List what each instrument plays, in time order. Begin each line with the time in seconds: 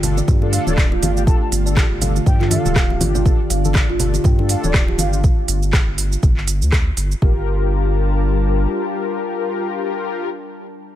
Already playing: analog synth bass G1, ambient pad D3 A3 F4
0.03 analog polysynth D4 F4 A4, open hi-hat, low conga, shaker
0.17 kalimba D5, muted conga, shaker
0.28 analog synth bass G2, kalimba G4, kick, low conga, shaker
0.42 analog polysynth D4 F4 A4, muted conga
0.52 bansuri F5, kalimba F5, open hi-hat, shaker
0.67 analog synth bass D1, bansuri D5, muted conga, high conga, shaker
0.77 kalimba D5, kick, cross-stick, clap, shaker
0.92 analog polysynth D4 F4 G4, kalimba F4, muted conga
1.02 analog synth bass G1, kalimba G4, bansuri F5, open hi-hat, high conga, shaker
1.16 kalimba G4, bansuri F5, shaker
1.27 analog polysynth D4 F4 A4, kalimba G5, bansuri A5, kick, muted conga, shaker
1.41 bansuri A5
1.52 analog synth bass G1, open hi-hat, muted conga, shaker
1.66 analog polysynth D4 F4 A4, kalimba D5, shaker
1.76 kalimba G4, kick, cross-stick, clap, muted conga, shaker
1.91 analog synth bass G1
2.01 analog polysynth D4 F4 A4, kalimba F5, open hi-hat, high conga, low conga, shaker
2.16 muted conga, shaker
2.26 analog synth bass G2, ambient pad D4, kalimba D5, bansuri G5, kick, shaker
2.40 analog polysynth D4 F4 A4, kalimba F4, clap, muted conga
2.51 kalimba G4, bansuri F5, open hi-hat, high conga, shaker
2.65 analog synth bass D1, kalimba G4, muted conga, low conga, shaker
2.76 kalimba G5, kick, cross-stick, clap, shaker
2.90 analog polysynth D4 F4 G4, muted conga
3.01 analog synth bass G1, open hi-hat, high conga, low conga, shaker
3.15 kalimba D5, low conga, shaker
3.25 analog polysynth D4 F4 A4, kalimba G4, kick, muted conga, shaker
3.50 analog synth bass G1, kalimba F5, open hi-hat, muted conga, shaker
3.65 analog polysynth D4 F4 A4, high conga, shaker
3.74 kalimba D5, kick, cross-stick, clap, muted conga, shaker
3.89 analog synth bass G1, kalimba F4
4.00 analog polysynth D4 F4 A4, kalimba G4, open hi-hat, low conga, shaker
4.14 kalimba G4, muted conga, shaker
4.24 analog synth bass G2, kalimba G5, kick, low conga, shaker
4.39 analog polysynth D4 F4 A4, muted conga
4.49 bansuri F5, open hi-hat, shaker
4.64 analog synth bass D1, bansuri D5, kalimba D5, muted conga, high conga, shaker
4.74 kick, cross-stick, clap, shaker
4.88 analog polysynth D4 F4 G4, muted conga
4.98 analog synth bass G1, kalimba F5, bansuri F5, open hi-hat, high conga, shaker
5.13 bansuri F5, shaker
5.24 kick, shaker
5.48 analog synth bass G1, open hi-hat, shaker
5.63 shaker
5.73 kick, cross-stick, clap, shaker
5.88 analog synth bass G1
5.98 open hi-hat, shaker
6.12 shaker
6.23 analog synth bass G1, kick, shaker
6.37 clap
6.48 open hi-hat, shaker
6.62 analog synth bass D2, shaker
6.72 kick, cross-stick, clap, shaker
6.97 analog synth bass G1, open hi-hat, shaker
7.12 shaker
7.22 analog synth bass G1, ambient pad G3 D4 A#4 A5, analog polysynth F4 G4 A#4, kalimba G4, kick